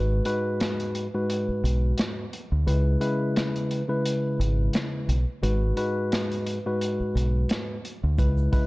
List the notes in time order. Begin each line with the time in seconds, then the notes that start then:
Already playing: G#1 G#2 G#3 F#4 B4
0.25 G#2 G#3 F#4 B4, closed hi-hat
0.60 cross-stick, snare, closed hi-hat
0.80 closed hi-hat
0.95 closed hi-hat
1.14 G#2 G#3 F#4 B4
1.30 closed hi-hat
1.48 muted fingered electric bass stroke
1.64 B1, closed hi-hat
1.98 cross-stick, snare, closed hi-hat
2.33 closed hi-hat
2.52 D2
2.66 C#2 C#3 G#3 E4 B4, closed hi-hat
3.00 C#3 G#3 E4 B4, closed hi-hat
3.36 cross-stick, snare, closed hi-hat
3.56 closed hi-hat
3.71 closed hi-hat
3.88 C#3 G#3 E4 B4
4.06 closed hi-hat
4.39 G#1, closed hi-hat
4.73 cross-stick, snare, closed hi-hat
5.08 B1, closed hi-hat
5.42 G#1 G#2 G#3 F#4 B4, closed hi-hat
5.76 G#2 G#3 F#4 B4, closed hi-hat
6.12 cross-stick, snare, closed hi-hat
6.32 closed hi-hat
6.47 closed hi-hat
6.66 G#2 G#3 F#4 B4
6.81 closed hi-hat
7.00 muted fingered electric bass stroke
7.15 B1, closed hi-hat
7.49 cross-stick, snare, closed hi-hat
7.85 closed hi-hat
8.03 D2
8.18 C#2 C#3 G#3 E4 B4, kick, closed hi-hat, shaker
8.37 shaker
8.52 C#3 G#3 E4 B4, kick, closed hi-hat, shaker